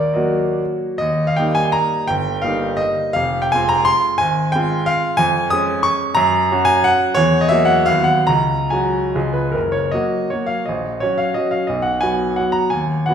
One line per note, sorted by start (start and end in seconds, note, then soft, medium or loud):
0.00 0.14 D#2 medium
0.00 0.12 A#4 medium
0.00 0.15 D5 medium
0.14 0.96 F#3 medium
0.14 0.96 A#3 medium
0.14 0.96 F#4 medium
0.14 0.56 A#4 soft
0.14 0.59 D#5 medium
0.98 1.37 D#2 medium
0.98 1.27 D#5 loud
1.27 1.37 F5 medium
1.36 2.06 G3 medium
1.36 2.06 A#3 medium
1.36 2.07 D#4 medium
1.36 1.56 G5 loud
1.55 1.74 G#5 loud
1.72 2.08 A#5 loud
2.08 2.43 G1 medium
2.08 2.43 G5 loud
2.42 3.12 G3 medium
2.42 3.12 A#3 medium
2.42 3.13 D#4 medium
2.42 2.79 F5 medium
2.77 3.14 D#5 loud
3.13 3.51 F1 medium
3.13 3.41 F5 loud
3.42 3.51 G5 medium
3.52 4.18 G#3 medium
3.52 4.18 C4 medium
3.52 4.18 F4 medium
3.52 3.70 G#5 loud
3.69 3.87 A#5 loud
3.85 4.19 C6 loud
4.18 4.54 G#1 medium
4.18 4.53 G#5 loud
4.52 5.17 G#3 medium
4.52 5.16 C4 medium
4.52 4.88 G5 loud
4.56 5.17 F4 medium
4.86 5.19 F5 loud
5.17 5.51 F2 medium
5.17 5.51 G#5 loud
5.50 6.14 G#3 medium
5.50 6.14 C#4 medium
5.50 5.85 D#6 loud
5.83 6.16 C#6 loud
6.15 6.50 F#2 medium
6.15 6.68 A#5 loud
6.52 7.14 F#3 medium
6.52 7.15 C#4 medium
6.52 7.15 F#4 medium
6.65 6.84 G#5 loud
6.84 7.17 F#5 loud
7.15 7.50 E2 medium
7.15 7.41 C#5 loud
7.41 7.51 D#5 loud
7.49 7.85 F#3 medium
7.49 7.85 A#3 medium
7.49 7.86 F#4 medium
7.49 7.69 E5 loud
7.65 7.87 F#5 loud
7.86 8.28 D#2 medium
7.86 8.25 F#3 medium
7.86 8.25 B3 medium
7.86 8.25 F#4 medium
7.86 8.07 F5 loud
8.04 8.27 F#5 loud
8.27 8.71 C#2 medium
8.27 8.71 A#5 loud
8.70 9.12 F#3 medium
8.70 9.12 G#3 medium
8.70 9.12 F#4 medium
8.70 9.35 G#5 medium
9.15 9.54 C#2 medium
9.15 9.51 F3 medium
9.15 9.51 G#3 medium
9.15 9.52 G#4 medium
9.33 9.54 B4 medium
9.52 9.92 F#1 medium
9.52 9.72 A#4 medium
9.72 9.92 C#5 medium
9.91 10.27 F#3 medium
9.91 10.27 A#3 medium
9.91 10.28 F#4 medium
9.91 10.30 D#5 medium
10.30 10.63 F#3 soft
10.30 10.63 A#3 soft
10.30 10.64 F#4 medium
10.30 10.48 C#5 medium
10.46 10.65 F5 medium
10.66 11.02 A#1 medium
10.66 11.01 D#5 medium
11.00 11.34 F#3 medium
11.00 11.34 C#4 medium
11.00 11.34 F#4 medium
11.00 11.19 C#5 medium
11.18 11.36 F5 medium
11.34 11.66 F#3 soft
11.34 11.67 C#4 medium
11.34 11.66 F#4 medium
11.34 11.52 D#5 medium
11.51 11.68 F5 medium
11.67 12.03 B1 medium
11.67 11.85 D#5 medium
11.82 12.02 F#5 medium
12.01 12.35 F#3 medium
12.01 12.35 B3 medium
12.01 12.35 F#4 medium
12.01 12.37 G#5 loud
12.36 12.68 F#3 medium
12.36 12.69 B3 soft
12.36 12.69 F#4 medium
12.36 12.54 F#5 medium
12.52 12.70 A#5 medium
12.70 13.06 D#2 medium
12.70 13.06 G#5 medium
13.06 13.14 F#3 medium
13.06 13.14 B3 medium
13.06 13.14 F#4 medium
13.06 13.14 F#5 medium